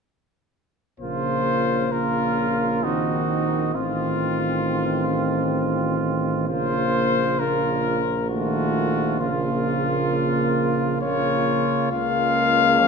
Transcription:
1.00 3.70 A#1 soft
1.00 1.88 C#3 soft
1.00 1.88 A#3 soft
1.00 1.88 F4 soft
1.00 1.94 C5 medium
1.91 2.85 C#3 soft
1.91 2.86 A#3 soft
1.91 2.85 F4 soft
1.91 2.85 A#4 medium
2.83 3.74 D#3 soft
2.83 3.74 C4 soft
2.83 3.77 D#4 soft
2.83 3.73 F#4 medium
3.74 6.50 A1 soft
3.74 6.44 D#3 soft
3.74 6.44 C4 soft
3.74 5.98 F4 medium
3.74 6.48 F4 soft
6.48 11.75 A#1 medium
6.48 7.38 C#3 soft
6.48 7.22 A#3 soft
6.48 7.38 F4 soft
6.48 7.41 C5 medium
7.39 8.01 C#3 soft
7.39 8.01 A#3 soft
7.39 8.02 F4 soft
7.39 8.29 A#4 medium
8.30 9.16 D#3 soft
8.30 9.17 A3 soft
8.30 9.16 F4 soft
8.30 9.22 F#4 medium
9.19 10.98 C#3 medium
9.19 10.98 A#3 medium
9.19 10.98 F4 soft
9.19 11.00 F4 medium
11.01 11.90 C#3 medium
11.01 11.91 A#3 medium
11.01 11.90 F4 soft
11.01 11.90 C#5 medium
11.92 12.88 C#2 medium
11.92 12.77 C#3 medium
11.92 12.88 A#3 medium
11.92 12.81 F4 soft
11.92 12.88 F5 medium
12.79 12.88 F3 medium
12.79 12.88 C#4 medium

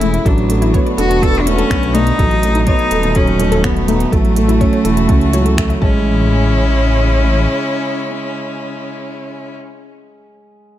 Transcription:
0.00 0.19 E1 medium
0.00 0.23 C#3 medium
0.00 0.27 G#3 loud
0.00 0.27 A3 medium
0.00 0.08 A3 medium
0.00 0.28 C#4 medium
0.00 0.28 E4 medium
0.00 0.25 E4 medium
0.00 0.28 A4 medium
0.00 0.24 G#5 medium
0.00 closed hi-hat medium
0.14 closed hi-hat soft
0.25 0.79 A1 loud
0.25 2.17 D3 medium
0.25 0.49 F#3 medium
0.25 2.17 B3 medium
0.25 0.75 D4 medium
0.25 2.17 F#4 medium
0.25 0.33 A4 loud
0.25 kick loud
0.25 closed hi-hat soft
0.38 closed hi-hat soft
0.50 0.64 A3 medium
0.50 closed hi-hat medium
0.62 0.66 E4 medium
0.62 closed hi-hat soft
0.74 0.88 B3 medium
0.74 0.81 C#5 loud
0.74 kick loud
0.74 closed hi-hat soft
0.86 0.90 D5 medium
0.86 closed hi-hat soft
0.98 1.64 E1 loud
0.98 1.21 D4 medium
0.98 1.24 F#4 loud
0.98 1.02 A4 medium
0.98 closed hi-hat medium
1.10 1.17 A5 medium
1.10 closed hi-hat soft
1.22 1.45 B3 medium
1.22 1.33 A4 medium
1.22 1.42 A4 loud
1.22 kick medium
1.22 closed hi-hat soft
1.35 closed hi-hat soft
1.40 1.47 D4 medium
1.46 1.70 A3 medium
1.46 1.96 C#4 loud
1.46 1.51 E4 medium
1.46 closed hi-hat medium
1.58 1.69 A4 loud
1.58 closed hi-hat soft
1.70 2.12 B1 loud
1.70 1.94 B3 medium
1.70 finger snap medium
1.70 kick loud
1.70 closed hi-hat soft
1.83 closed hi-hat soft
1.94 2.02 A3 medium
1.94 2.18 D4 medium
1.94 2.66 D#4 loud
1.94 closed hi-hat medium
2.07 closed hi-hat soft
2.19 2.73 A1 loud
2.19 4.11 B2 medium
2.19 2.42 F#3 medium
2.19 5.79 A3 medium
2.19 4.11 D#4 medium
2.19 2.26 A4 loud
2.19 kick loud
2.19 closed hi-hat soft
2.31 closed hi-hat soft
2.43 2.67 A3 medium
2.43 closed hi-hat medium
2.55 2.60 D#4 medium
2.55 closed hi-hat soft
2.67 2.82 B3 medium
2.67 3.17 D#4 loud
2.67 2.74 C#5 medium
2.67 kick loud
2.67 closed hi-hat soft
2.79 2.84 C#5 medium
2.79 closed hi-hat soft
2.91 4.06 D#1 loud
2.91 2.96 A4 medium
2.91 3.15 A4 medium
2.91 closed hi-hat medium
3.03 3.11 A5 medium
3.03 closed hi-hat soft
3.15 3.30 F#3 loud
3.15 3.65 C#4 medium
3.15 3.26 A4 medium
3.15 kick loud
3.15 closed hi-hat soft
3.27 closed hi-hat soft
3.40 3.64 A3 medium
3.40 3.44 D#4 medium
3.40 closed hi-hat medium
3.52 3.62 A4 loud
3.52 closed hi-hat soft
3.64 4.14 B3 medium
3.64 3.88 B3 medium
3.64 finger snap medium
3.64 kick medium
3.64 closed hi-hat soft
3.77 closed hi-hat soft
3.88 3.95 A3 medium
3.88 4.12 D#4 medium
3.88 closed hi-hat medium
4.00 closed hi-hat soft
4.12 4.66 A1 loud
4.12 5.81 E3 medium
4.12 4.36 F#3 medium
4.12 5.82 A3 loud
4.12 5.81 F#4 medium
4.12 4.19 A4 loud
4.12 kick loud
4.12 closed hi-hat soft
4.25 closed hi-hat soft
4.36 4.51 A3 medium
4.36 closed hi-hat medium
4.48 4.53 E4 medium
4.48 closed hi-hat soft
4.61 4.75 C#4 medium
4.61 4.68 C#5 loud
4.61 kick loud
4.61 closed hi-hat soft
4.73 4.77 C#5 medium
4.73 closed hi-hat soft
4.85 5.11 E1 loud
4.85 5.09 E4 medium
4.85 4.89 A4 medium
4.85 closed hi-hat medium
4.97 5.04 A5 medium
4.97 closed hi-hat soft
5.09 5.75 C#2 loud
5.09 5.33 C#4 medium
5.09 5.20 A4 medium
5.09 kick loud
5.09 closed hi-hat soft
5.21 closed hi-hat soft
5.33 5.57 F#3 medium
5.33 5.40 C#5 medium
5.33 closed hi-hat medium
5.45 5.50 A4 medium
5.45 closed hi-hat soft
5.58 5.81 A3 medium
5.58 5.65 E5 medium
5.58 finger snap medium
5.58 kick loud
5.58 closed hi-hat soft
5.70 5.77 E5 medium
5.70 closed hi-hat soft
5.82 7.47 A1 loud
5.82 9.54 C#3 medium
5.82 6.27 G#3 medium
5.82 9.54 G#3 medium
5.82 9.54 C#4 loud
5.82 9.54 E4 medium
5.82 6.27 A5 medium
5.82 kick loud

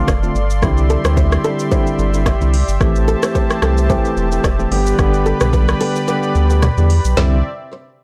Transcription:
0.00 0.60 A4 medium
0.00 2.77 D5 medium
0.00 0.60 F5 medium
0.00 2.77 C6 medium
0.08 0.30 F1 loud
0.08 0.28 D5 medium
0.08 kick medium
0.08 cross-stick medium
0.08 shaker medium
0.23 0.37 D3 medium
0.23 0.37 A3 medium
0.23 0.37 C4 medium
0.23 0.37 F4 medium
0.23 shaker soft
0.35 0.64 G1 loud
0.35 shaker medium
0.50 shaker medium
0.62 0.97 C2 loud
0.62 1.01 D3 loud
0.62 1.01 G3 medium
0.62 1.01 C4 medium
0.62 1.01 E4 loud
0.62 7.13 G4 medium
0.62 4.68 E5 medium
0.62 kick loud
0.62 cross-stick medium
0.62 shaker medium
0.77 shaker medium
0.90 1.01 A4 medium
0.90 shaker medium
1.04 1.37 D2 loud
1.04 1.41 D3 medium
1.04 1.41 G3 medium
1.04 1.41 C4 medium
1.04 1.41 E4 medium
1.04 1.14 C5 medium
1.04 cross-stick loud
1.04 shaker medium
1.17 1.28 C5 medium
1.17 kick medium
1.17 shaker medium
1.32 cross-stick medium
1.32 shaker medium
1.44 1.69 D3 medium
1.44 1.70 G3 medium
1.44 1.70 C4 medium
1.44 1.70 E4 medium
1.44 1.56 A4 medium
1.44 shaker medium
1.59 shaker medium
1.71 2.10 D3 medium
1.71 2.10 G3 medium
1.71 2.10 C4 medium
1.71 2.10 E4 loud
1.71 1.92 C5 medium
1.71 kick loud
1.71 shaker medium
1.87 shaker medium
1.99 2.34 G1 medium
1.99 shaker medium
2.14 2.28 D3 medium
2.14 2.28 G3 medium
2.14 2.28 C4 medium
2.14 2.28 E4 medium
2.14 shaker medium
2.26 2.46 D5 medium
2.26 kick medium
2.26 cross-stick medium
2.26 shaker medium
2.41 2.64 C2 loud
2.41 2.55 D3 medium
2.41 2.55 G3 medium
2.41 2.55 C4 medium
2.41 2.55 E4 medium
2.41 shaker soft
2.54 open hi-hat medium
2.54 shaker medium
2.68 2.78 G1 medium
2.68 shaker medium
2.81 3.16 A1 loud
2.81 3.19 E3 loud
2.81 3.19 A3 medium
2.81 3.19 C4 medium
2.81 3.20 G4 loud
2.81 4.70 C5 medium
2.81 4.70 A5 medium
2.81 kick loud
2.81 cross-stick medium
2.81 shaker medium
2.96 shaker medium
3.08 3.19 A4 medium
3.08 shaker soft
3.23 3.59 E3 medium
3.23 3.60 A3 medium
3.23 3.60 C4 medium
3.23 3.60 G4 medium
3.23 3.32 C5 medium
3.23 cross-stick loud
3.23 shaker medium
3.35 3.46 C5 medium
3.35 kick medium
3.35 shaker medium
3.50 cross-stick medium
3.50 shaker medium
3.62 3.97 C2 loud
3.62 3.88 E3 medium
3.62 3.88 A3 medium
3.62 3.88 C4 medium
3.62 3.88 G4 medium
3.62 3.74 A4 medium
3.62 cross-stick medium
3.62 shaker medium
3.78 shaker medium
3.89 4.28 E3 medium
3.89 4.28 A3 medium
3.89 4.28 C4 medium
3.89 4.28 G4 loud
3.89 4.10 C5 medium
3.89 kick loud
3.89 shaker medium
4.05 shaker medium
4.17 4.39 E1 loud
4.17 shaker soft
4.32 4.46 E3 medium
4.32 4.46 A3 medium
4.32 4.46 C4 medium
4.32 4.46 G4 medium
4.32 shaker medium
4.44 4.67 E1 loud
4.44 4.65 D5 medium
4.44 kick medium
4.44 cross-stick medium
4.44 shaker medium
4.59 4.73 E3 medium
4.59 4.73 A3 medium
4.59 4.73 C4 medium
4.59 4.71 G4 medium
4.59 shaker soft
4.71 4.94 G1 loud
4.71 4.97 D3 medium
4.71 4.97 G3 medium
4.71 4.97 B3 medium
4.71 4.97 G4 loud
4.71 7.14 B4 medium
4.71 7.14 D5 medium
4.71 7.14 B5 loud
4.71 open hi-hat medium
4.71 shaker medium
4.86 shaker loud
4.98 5.34 G1 loud
4.98 5.37 D3 loud
4.98 5.37 G3 medium
4.98 5.37 B3 medium
4.98 5.37 G4 loud
4.98 kick loud
4.98 cross-stick medium
4.98 shaker medium
5.14 shaker medium
5.26 5.37 A4 medium
5.26 shaker medium
5.41 5.74 B1 loud
5.41 5.78 D3 medium
5.41 5.78 G3 medium
5.41 5.78 B3 medium
5.41 5.78 G4 medium
5.41 5.50 B4 medium
5.41 cross-stick loud
5.41 mid tom medium
5.41 shaker medium
5.53 5.65 B4 medium
5.53 kick medium
5.53 shaker medium
5.68 cross-stick medium
5.68 shaker medium
5.80 6.06 D3 medium
5.80 6.06 G3 medium
5.80 6.06 B3 medium
5.80 6.06 G4 medium
5.80 5.92 A4 medium
5.80 open hi-hat medium
5.80 shaker medium
5.96 shaker medium
6.08 6.46 D3 medium
6.08 6.47 G3 medium
6.08 6.47 B3 medium
6.08 6.47 G4 loud
6.08 6.28 B4 medium
6.08 shaker medium
6.23 shaker soft
6.35 6.70 D2 medium
6.35 shaker soft
6.50 6.64 D3 medium
6.50 6.64 G3 medium
6.50 6.64 B3 medium
6.50 6.64 G4 medium
6.50 shaker medium
6.62 6.83 D5 medium
6.62 cross-stick medium
6.62 mid tom loud
6.62 shaker medium
6.77 7.00 E2 loud
6.77 6.91 D3 medium
6.77 6.91 G3 medium
6.77 6.92 B3 medium
6.77 6.92 G4 medium
6.77 shaker soft
6.90 open hi-hat medium
6.90 shaker medium
7.05 7.15 B1 medium
7.05 shaker loud
7.16 7.42 C2 loud
7.16 7.42 C3 medium
7.16 7.38 D3 medium
7.16 7.38 G3 medium
7.16 7.42 C4 medium
7.16 7.38 C4 medium
7.16 7.38 E4 loud
7.16 7.33 C5 medium
7.16 7.42 D5 medium
7.16 7.42 E5 medium
7.16 snare loud
7.16 floor tom loud

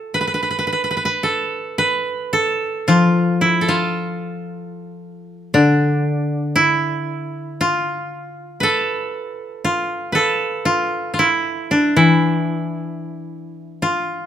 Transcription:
0.00 0.12 F4 soft
0.00 0.96 A4 medium
0.14 0.20 B4 medium
0.21 0.27 B4 soft
0.27 0.34 B4 soft
0.34 0.42 B4 soft
0.43 0.50 B4 soft
0.51 0.58 B4 soft
0.59 0.67 B4 soft
0.67 0.72 B4 soft
0.73 0.83 B4 soft
0.84 0.90 B4 soft
0.91 0.96 B4 soft
0.97 1.05 B4 soft
1.05 1.78 B4 medium
1.23 2.32 A4 medium
1.78 3.56 B4 medium
2.33 3.61 A4 medium
2.88 6.06 F3 soft
2.88 3.47 F4 medium
3.41 3.74 E4 medium
3.61 5.52 A4 soft
3.68 5.87 F4 medium
5.54 8.65 D3 soft
5.54 7.97 D4 medium
6.56 7.67 E4 medium
7.61 9.64 F4 medium
8.60 10.15 A4 medium
8.60 10.12 B4 medium
9.65 10.65 F4 medium
10.12 12.05 A4 medium
10.12 11.90 B4 medium
10.65 11.13 F4 medium
11.14 11.25 F4 soft
11.19 11.96 E4 medium
11.71 14.14 D4 medium
11.96 14.26 E3 soft
11.96 13.88 E4 medium
13.82 14.26 F4 medium

